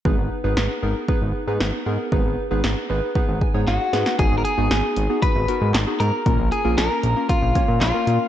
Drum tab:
HH |----------------|----------------|x-x-x-x-x-x-x-x-|x-x-x-x-x-x-x-x-|
CP |----------------|----------------|------------x---|------------x---|
SD |----o-------o---|----o-------o-oo|----o-------o---|----o-------o---|
BD |o-------o-------|o-------o-o-----|o-------o-------|o-------o-o-----|